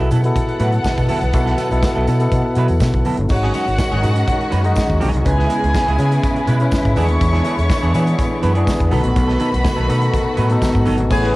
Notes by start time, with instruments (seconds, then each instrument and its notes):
Already playing: tine electric piano B2 B3 E4 G#4 A4
0.00 clean electric guitar F#3 B3 E4 A4
0.11 fingered electric bass B2, clean electric guitar F#3 B3 E4 A4, violin section B3 A4 F#5, closed hi-hat, tambourine, low conga
0.23 tine electric piano B2 B3 E4 A4, muted clean electric guitar stroke, closed hi-hat
0.36 kick, closed hi-hat, tambourine, muted conga, low conga
0.49 muted clean electric guitar stroke, closed hi-hat
0.60 fingered electric bass A2, clean electric guitar F#3 B3 E4 B4, closed hi-hat, tambourine
0.72 muted clean electric guitar stroke, closed hi-hat
0.84 muted clean electric guitar stroke, muted fingered electric bass stroke, kick, snare, tambourine, high conga
0.97 fingered electric bass B2, muted clean electric guitar stroke, kick, closed hi-hat, tambourine
1.08 clean electric guitar F#3 B3 E4 A4, open hi-hat, tambourine, high conga
1.21 fingered electric bass B1, muted clean electric guitar stroke, closed hi-hat
1.33 fingered electric bass B1, tine electric piano B2 B3 E4 A4, muted clean electric guitar stroke, kick, closed hi-hat, tambourine
1.45 clean electric guitar F#3 B3 E4 A4, snare, closed hi-hat
1.58 clean electric guitar F#3 B3 E4 A4, closed hi-hat, tambourine, muted conga
1.70 fingered electric bass B1, tine electric piano B2 B3 E4 A4, muted clean electric guitar stroke, closed hi-hat, tambourine
1.83 muted clean electric guitar stroke, kick, snare, tambourine, high conga
1.95 fingered electric bass B1, clean electric guitar F#3 B3 E4 A4
2.07 fingered electric bass B2, clean electric guitar F#3 B3 E4 A4, closed hi-hat, tambourine
2.20 tine electric piano B2 B3 E4 A4, muted clean electric guitar stroke, closed hi-hat, tambourine
2.32 fingered electric bass B2, kick, closed hi-hat, tambourine, muted conga
2.45 muted clean electric guitar stroke
2.55 fingered electric bass B2, clean electric guitar F#3 B3 E4 B4, closed hi-hat, tambourine
2.68 fingered electric bass E2, muted clean electric guitar stroke, closed hi-hat, tambourine
2.80 fingered electric bass B2, muted clean electric guitar stroke, kick, snare, tambourine, high conga
2.93 fingered electric bass B1, muted clean electric guitar stroke, kick, closed hi-hat, high conga
3.05 clean electric guitar F#3 B3 E4 A4, open hi-hat, tambourine, high conga
3.17 fingered electric bass G1, muted clean electric guitar stroke, closed hi-hat
3.29 fingered electric bass G#1, string section D#3 G#3 C#4 F#4, tine electric piano G#3 D#4 F#4 C#5, violin section F#4 F#5, muted clean electric guitar stroke, kick, crash, tambourine, muted conga
3.43 clean electric guitar F#3 C#4 D#4 G#4, snare
3.54 clean electric guitar F#3 C#4 D#4 G#4, closed hi-hat, tambourine, muted conga
3.67 fingered electric bass G#1, muted clean electric guitar stroke, closed hi-hat, tambourine
3.78 muted clean electric guitar stroke, kick, snare, tambourine, high conga
3.92 fingered electric bass G#1, clean electric guitar F#3 C#4 D#4 G#4
4.02 fingered electric bass G#2, clean electric guitar F#3 C#4 D#4 G#4, tine electric piano G#3 D#4 F#4 G#4, closed hi-hat, tambourine, low conga
4.16 muted clean electric guitar stroke, closed hi-hat, tambourine
4.27 kick, closed hi-hat, tambourine, muted conga, low conga
4.40 muted clean electric guitar stroke, closed hi-hat
4.50 fingered electric bass F#2, clean electric guitar F#3 C#4 D#4 B4, closed hi-hat, tambourine
4.64 tine electric piano G#3 D#4 F#4 D#5, muted clean electric guitar stroke, closed hi-hat
4.75 muted clean electric guitar stroke, kick, snare, tambourine, high conga
4.89 fingered electric bass D#2, muted clean electric guitar stroke, kick
5.00 fingered electric bass B1, clean electric guitar F#3 C#4 D#4 G#4, open hi-hat, tambourine, high conga
5.13 fingered electric bass C2, muted clean electric guitar stroke, closed hi-hat
5.24 fingered electric bass C#2, tine electric piano C#3 C#4 D#4 B4, string section C#3 B3 E4, violin section G#4 G#5, muted clean electric guitar stroke, kick, closed hi-hat, tambourine, muted conga
5.32 tine electric piano E4
5.38 clean electric guitar G#3 B3 E4 G#4, snare
5.49 clean electric guitar G#3 B3 E4 G#4, closed hi-hat, tambourine, muted conga
5.62 fingered electric bass C#2, muted clean electric guitar stroke, closed hi-hat
5.73 muted clean electric guitar stroke, kick, snare, tambourine, high conga
5.87 fingered electric bass C#2, clean electric guitar G#3 B3 E4 G#4, closed hi-hat
5.98 tine electric piano C#3 C#4 E4 G#4, fingered electric bass C#3, clean electric guitar G#3 B3 E4 G#4, closed hi-hat, tambourine
6.12 muted clean electric guitar stroke, closed hi-hat, tambourine
6.23 kick, closed hi-hat, tambourine, muted conga
6.36 muted clean electric guitar stroke, closed hi-hat
6.47 fingered electric bass B2, clean electric guitar G#3 B3 E4 B4, closed hi-hat, tambourine, low conga
6.60 tine electric piano C#3 C#4 E4 B4, muted clean electric guitar stroke, closed hi-hat, tambourine
6.71 muted clean electric guitar stroke, kick, snare, tambourine, high conga
6.85 fingered electric bass G#2, muted clean electric guitar stroke, kick, closed hi-hat, tambourine
6.96 fingered electric bass E2, string section D3 B3, tine electric piano E3 B3 D4 G#4, clean electric guitar E3 B3 D4 G#4, violin section C#5 C#6, open hi-hat, tambourine, high conga
7.08 fingered electric bass D#2, muted clean electric guitar stroke, closed hi-hat
7.20 fingered electric bass E2, muted clean electric guitar stroke, kick, closed hi-hat, tambourine, muted conga
7.33 clean electric guitar E3 B3 D4 G#4, snare, closed hi-hat
7.45 clean electric guitar E3 B3 D4 G#4, closed hi-hat, tambourine, muted conga
7.58 fingered electric bass E2, muted clean electric guitar stroke, closed hi-hat, tambourine
7.69 muted clean electric guitar stroke, kick, snare, tambourine, high conga
7.82 fingered electric bass E2, clean electric guitar E3 B3 D4 G#4, closed hi-hat
7.94 clean electric guitar E3 B3 D4 G#4, tine electric piano E3 B3 D4 G#4, fingered electric bass E3, closed hi-hat, tambourine, low conga
8.07 muted clean electric guitar stroke, closed hi-hat, tambourine
8.18 muted clean electric guitar stroke, kick, closed hi-hat, tambourine, muted conga, low conga
8.31 muted clean electric guitar stroke
8.42 fingered electric bass F#2, clean electric guitar E3 B3 D4 B4, closed hi-hat, tambourine
8.54 clean electric guitar E3 B3 D4 G#4, tine electric piano E3 B3 D4 G#4, closed hi-hat
8.67 kick, snare, tambourine, high conga
8.79 fingered electric bass E2, muted clean electric guitar stroke, kick, closed hi-hat, tambourine
8.91 fingered electric bass B1, tine electric piano B2 B3 D#4 A4, string section D#3 A3 F#4, clean electric guitar F#3 B3 D#4 A4, violin section B4 B5, open hi-hat, tambourine, high conga
9.04 fingered electric bass A#1, muted clean electric guitar stroke, closed hi-hat
9.14 fingered electric bass B1, muted clean electric guitar stroke, kick, closed hi-hat, tambourine, muted conga
9.28 clean electric guitar F#3 B3 D#4 A4, snare, closed hi-hat
9.39 clean electric guitar F#3 B3 D#4 A4, closed hi-hat, tambourine, muted conga
9.53 fingered electric bass B1, muted clean electric guitar stroke, closed hi-hat, tambourine
9.64 muted clean electric guitar stroke, kick, snare, tambourine, high conga
9.76 fingered electric bass B1, clean electric guitar F#3 B3 D#4 A4, closed hi-hat
9.88 tine electric piano B2 B3 D#4 A4, fingered electric bass B2, clean electric guitar F#3 B3 D#4 A4, closed hi-hat, tambourine
10.02 muted clean electric guitar stroke, closed hi-hat
10.14 kick, closed hi-hat, tambourine, muted conga
10.25 muted clean electric guitar stroke
10.37 fingered electric bass A2, clean electric guitar F#3 B3 D#4 B4, closed hi-hat, tambourine, low conga
10.50 tine electric piano B2 B3 D#4 A4, muted clean electric guitar stroke, closed hi-hat, tambourine
10.62 muted clean electric guitar stroke, kick, snare, tambourine, high conga
10.74 fingered electric bass G#2, muted clean electric guitar stroke, kick, tambourine
10.85 fingered electric bass G1, clean electric guitar F#3 B3 D#4 A4, open hi-hat, tambourine, high conga
10.98 fingered electric bass G#1, muted clean electric guitar stroke, closed hi-hat
11.10 fingered electric bass A1, string section C#3 A3 B3 G#4, tine electric piano A3 G#4 B4 C#5, horn section B3 E4 G#4 B4, violin section G#4 G#5, muted clean electric guitar stroke, kick, crash, tambourine, muted conga
11.22 clean electric guitar G#3 C#4 E4 B4, snare, closed hi-hat